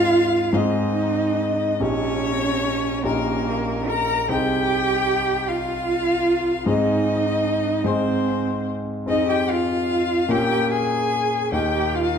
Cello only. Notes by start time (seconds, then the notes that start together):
Already playing: F4
0.54 D#4
1.80 C#4
3.04 A#3
3.88 A#4
4.30 G4
5.48 F4
6.68 D#4
7.85 C4
9.08 D#4
9.29 G4
9.50 F4
10.30 G4
10.72 G#4
11.53 G4
11.94 F4
12.15 D#4